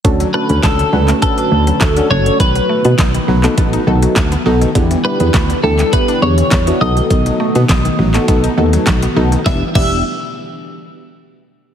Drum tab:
CC |----------------|----------------|----------------|----------------|
HH |xx-xxx-xxx-xxx-x|xx-xxx-xxx-xxx-x|xx-xxx-xxx-xxx-x|xx-xxx-xxx-xxx-x|
CP |----x--x----x---|----x--x----x---|----x--x----x---|----x--x----x---|
SD |----o-------o---|----o-------o---|----o-------o---|----o-------o---|
BD |o---o---o---o---|o---o---o---o---|o---o---o---o---|o---o---o---o---|

CC |--x-------------|
HH |----------------|
CP |----------------|
SD |o---------------|
BD |o-o-------------|